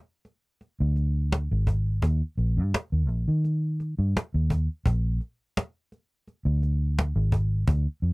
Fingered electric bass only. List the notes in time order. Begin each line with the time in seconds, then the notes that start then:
0.80 D2
1.51 G#1
2.02 D#2
2.38 A#1
2.57 G2
2.92 D#2
3.09 A#1
3.28 D#3
3.99 G2
4.34 D#2
4.86 A#1
6.45 D2
7.16 G#1
7.68 D2
8.02 F2